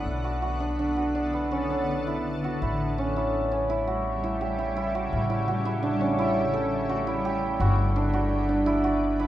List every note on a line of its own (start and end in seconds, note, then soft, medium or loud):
0.00 0.42 B3 medium
0.00 2.58 B3 medium
0.00 0.60 D4 medium
0.00 2.06 E4 medium
0.00 0.24 F#4 medium
0.05 2.58 B1 medium
0.05 2.60 D3 medium
0.05 2.60 A4 medium
0.24 0.42 F#4 medium
0.42 0.96 F#4 medium
0.60 0.79 D4 medium
0.79 1.14 D4 medium
0.97 2.44 F#4 medium
1.15 1.57 D4 medium
1.33 5.47 B3 medium
1.51 1.76 C#4 medium
1.70 3.04 D4 medium
2.07 2.61 E4 medium
2.44 3.87 F#4 medium
2.61 5.08 A1 medium
2.61 7.56 C#3 medium
2.61 9.27 G3 medium
2.61 7.56 A3 medium
2.61 3.16 E4 medium
2.98 3.51 C#4 medium
3.16 3.69 E4 medium
3.51 5.89 C#4 medium
3.70 4.23 E4 medium
3.87 4.47 F#4 medium
4.24 4.58 E4 medium
4.41 5.01 G4 medium
4.59 4.76 E4 medium
4.76 5.29 E4 medium
4.95 5.47 F#4 medium
5.13 7.57 A1 medium
5.30 5.65 E4 medium
5.48 6.89 F#4 medium
5.65 6.18 E4 medium
5.83 6.07 D4 medium
6.01 8.02 C#4 medium
6.19 7.07 E4 medium
6.54 9.27 A4 medium
6.89 7.31 F#4 medium
7.07 8.66 E4 medium
7.25 7.66 G4 medium
7.60 9.27 G1 medium
7.60 9.27 D3 medium
7.60 9.27 B3 medium
7.60 8.13 F#4 medium
7.96 8.48 D4 medium
8.13 8.83 F#4 medium
8.49 9.27 D4 medium
8.66 9.19 E4 medium
8.84 9.27 F#4 medium
9.20 9.27 E4 medium